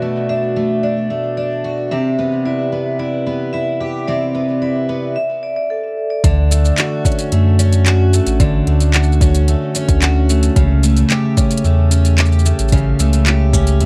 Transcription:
Already playing: twelve-string acoustic guitar B2 D4 F#4, vibraphone D5 E5
0.02 twelve-string acoustic guitar A3
0.29 twelve-string acoustic guitar D4, vibraphone E5
0.56 twelve-string acoustic guitar A3
0.83 twelve-string acoustic guitar D4, vibraphone D5
1.10 twelve-string acoustic guitar A3
1.37 twelve-string acoustic guitar D4, vibraphone D5
1.64 twelve-string acoustic guitar F#4
1.91 twelve-string acoustic guitar C3 G4, vibraphone E5
2.19 twelve-string acoustic guitar B3
2.45 twelve-string acoustic guitar E4, vibraphone D5
2.72 twelve-string acoustic guitar B3
2.99 twelve-string acoustic guitar E4, vibraphone D5
3.26 twelve-string acoustic guitar B3
3.53 twelve-string acoustic guitar E4, vibraphone E5
3.80 twelve-string acoustic guitar G4
4.08 twelve-string acoustic guitar C3 G4, vibraphone D5
4.35 twelve-string acoustic guitar B3
4.62 twelve-string acoustic guitar E4, vibraphone D5
4.89 twelve-string acoustic guitar B3
5.16 vibraphone E5
5.43 vibraphone D5
5.56 vibraphone D5
5.70 vibraphone A4
6.10 vibraphone D5
6.24 sub bass D2, twelve-string acoustic guitar D3, kick, closed hi-hat, shaker
6.51 twelve-string acoustic guitar A3, closed hi-hat, shaker
6.65 shaker
6.78 twelve-string acoustic guitar F#4, clap, closed hi-hat, shaker
7.05 twelve-string acoustic guitar C#4, kick, shaker
7.12 closed hi-hat
7.19 closed hi-hat, shaker
7.32 sub bass F#2, twelve-string acoustic guitar A3, closed hi-hat, shaker
7.59 twelve-string acoustic guitar C#4, closed hi-hat, shaker
7.73 closed hi-hat, shaker
7.86 twelve-string acoustic guitar F#4, clap, closed hi-hat, shaker
8.13 twelve-string acoustic guitar A3, shaker
8.27 sub bass A1, closed hi-hat, shaker
8.40 twelve-string acoustic guitar D3, kick, closed hi-hat, shaker
8.67 sub bass D2, twelve-string acoustic guitar A3, closed hi-hat
8.80 closed hi-hat, shaker
8.94 twelve-string acoustic guitar F#4, clap, closed hi-hat, shaker
9.03 shaker
9.12 shaker
9.21 twelve-string acoustic guitar C#4, kick, closed hi-hat, shaker
9.35 closed hi-hat, shaker
9.48 twelve-string acoustic guitar A3, closed hi-hat, shaker
9.75 twelve-string acoustic guitar C#4, closed hi-hat, shaker
9.88 sub bass D2, kick, closed hi-hat, shaker
10.02 twelve-string acoustic guitar F#4, clap, closed hi-hat, shaker
10.29 twelve-string acoustic guitar A3, shaker
10.43 closed hi-hat, shaker
10.56 sub bass C#2, twelve-string acoustic guitar C#3, kick, closed hi-hat, shaker
10.83 twelve-string acoustic guitar A3, closed hi-hat, shaker
10.97 closed hi-hat, shaker
11.10 twelve-string acoustic guitar G4, clap, closed hi-hat, shaker
11.37 twelve-string acoustic guitar C#4, kick, closed hi-hat, shaker
11.51 closed hi-hat, shaker
11.57 closed hi-hat
11.64 sub bass E2, twelve-string acoustic guitar A3, shaker
11.91 twelve-string acoustic guitar C#4, closed hi-hat, shaker
12.05 closed hi-hat, shaker
12.18 twelve-string acoustic guitar G4, clap, closed hi-hat, shaker
12.25 shaker
12.32 shaker
12.39 shaker
12.45 twelve-string acoustic guitar A3, shaker
12.59 sub bass A1, closed hi-hat, shaker
12.68 twelve-string acoustic guitar C#3, kick, closed hi-hat, shaker
12.73 shaker
12.77 shaker
12.99 sub bass C#2, twelve-string acoustic guitar A3, closed hi-hat, shaker
13.13 closed hi-hat, shaker
13.26 twelve-string acoustic guitar G4, clap, closed hi-hat, shaker
13.53 twelve-string acoustic guitar C#4, kick, closed hi-hat, shaker
13.67 closed hi-hat, shaker
13.81 sub bass E2, twelve-string acoustic guitar A3, closed hi-hat, shaker

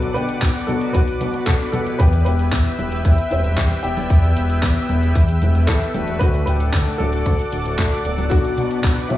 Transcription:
Already playing: analog synth bass B1, analog polysynth F#3 B3 D4 A4, grand piano F#4 B4, analog synth pad B4 D5 F#5 D6
0.02 closed hi-hat, cabasa
0.14 analog synth bass B2, analog polysynth D3 B3 D4 F#5, grand piano G4 B4, closed hi-hat, cabasa
0.29 closed hi-hat, cabasa
0.42 analog synth bass B1, kick, clap, closed hi-hat, cabasa
0.55 closed hi-hat, cabasa
0.67 analog synth bass B2, analog polysynth F#3 B3 D4 F#4, grand piano F#4 A4, closed hi-hat, high conga, cabasa
0.81 closed hi-hat, cabasa
0.93 analog synth bass B1, grand piano F#4 B4, kick, closed hi-hat, cabasa
1.08 closed hi-hat, cabasa
1.21 analog synth bass B2, analog polysynth F#3 B3 D4 F#4, closed hi-hat, high conga, cabasa
1.34 analog synth bass B2, analog polysynth F#3 B3 D4 F#4, closed hi-hat, cabasa
1.46 analog synth bass B1, grand piano F#4 A4, kick, clap, closed hi-hat, cabasa
1.60 analog polysynth F#3 B3 D4 F#4, closed hi-hat, cabasa
1.72 analog synth bass B2, analog polysynth B3 E4 G4 B4, grand piano F#4 A4, closed hi-hat, high conga, cabasa
1.87 analog synth bass B2, closed hi-hat, cabasa
1.99 analog synth bass E2, grand piano G4 B4, analog synth pad E5 G5 E6, kick, closed hi-hat, cabasa
2.13 closed hi-hat, cabasa
2.25 analog synth bass E1, analog polysynth B3 E4 G4 B4, grand piano G4 B4, closed hi-hat, cabasa
2.39 closed hi-hat, cabasa
2.52 analog synth bass E2, kick, clap, closed hi-hat, cabasa
2.66 closed hi-hat, cabasa
2.79 analog synth bass E1, analog polysynth B3 E4 G4 B4, closed hi-hat, high conga, cabasa
2.92 closed hi-hat, cabasa
3.04 analog synth bass E2, grand piano B3 E4, kick, closed hi-hat, cabasa
3.18 closed hi-hat, cabasa
3.30 analog synth bass E1, analog polysynth G3 E4 G4 B4, grand piano C4 E4, closed hi-hat, cabasa
3.44 analog synth bass E1, closed hi-hat, cabasa
3.58 analog synth bass E2, kick, clap, closed hi-hat, cabasa
3.71 closed hi-hat, cabasa
3.83 analog synth bass E1, analog polysynth B3 E4 G4 D5, grand piano E4 G4, closed hi-hat, cabasa
3.97 analog synth bass E1, closed hi-hat, high conga, cabasa
4.10 analog synth bass E2, kick, closed hi-hat, cabasa
4.23 closed hi-hat, cabasa
4.37 analog synth bass E1, analog polysynth B3 E4 G4 B4, closed hi-hat, cabasa
4.50 closed hi-hat, cabasa
4.63 analog synth bass E2, kick, clap, closed hi-hat, cabasa
4.76 closed hi-hat, cabasa
4.89 analog synth bass E1, analog polysynth B3 E4 G4 B4, closed hi-hat, high conga, cabasa
5.02 closed hi-hat, cabasa
5.15 analog synth bass E2, kick, closed hi-hat, cabasa
5.29 closed hi-hat, cabasa
5.42 analog synth bass E1, analog polysynth B3 E4 G4 B4, closed hi-hat, high conga, cabasa
5.55 analog synth bass E1, closed hi-hat, cabasa
5.67 analog synth bass E2, grand piano E4 A4, kick, clap, closed hi-hat, cabasa
5.81 closed hi-hat, cabasa
5.94 analog synth bass E1, analog polysynth A3 D4 F#4 B4, closed hi-hat, high conga, cabasa
6.08 analog synth bass E1, closed hi-hat, cabasa
6.19 analog synth bass D2, grand piano F#4 B4, analog synth pad A4 D5 F#5 D6, kick, closed hi-hat, cabasa
6.34 closed hi-hat, cabasa
6.46 analog synth bass D1, analog polysynth A3 D4 A4 F#5, grand piano G4 B4, closed hi-hat, cabasa
6.60 closed hi-hat, cabasa
6.73 analog synth bass D2, kick, clap, closed hi-hat, cabasa
6.87 closed hi-hat, cabasa
6.98 analog synth bass D1, analog polysynth A3 D4 F#4 A4, grand piano F#4 A4, closed hi-hat, high conga, cabasa
7.13 closed hi-hat, cabasa
7.26 analog synth bass D2, kick, closed hi-hat, cabasa
7.39 closed hi-hat, cabasa
7.52 analog synth bass D1, analog polysynth A3 D4 F#4 A4, closed hi-hat, cabasa
7.65 analog synth bass D1, closed hi-hat, cabasa
7.79 analog synth bass D2, kick, clap, closed hi-hat, cabasa
7.92 closed hi-hat, cabasa
8.05 analog synth bass D1, analog polysynth F#3 B3 D4 A4, closed hi-hat, cabasa
8.18 analog synth bass D1, closed hi-hat, high conga, cabasa
8.30 analog synth bass B1, grand piano D4 F#4, analog synth pad B4, kick, closed hi-hat, cabasa
8.45 closed hi-hat, cabasa
8.58 analog synth bass B2, analog polysynth F#3 B3 D4 F#4, closed hi-hat, cabasa
8.71 closed hi-hat, cabasa
8.84 analog synth bass B1, kick, clap, closed hi-hat, cabasa
8.97 closed hi-hat, cabasa
9.09 analog synth bass B2, analog polysynth F#3 B3 D4 F#4, grand piano C4 E4, closed hi-hat, high conga, cabasa

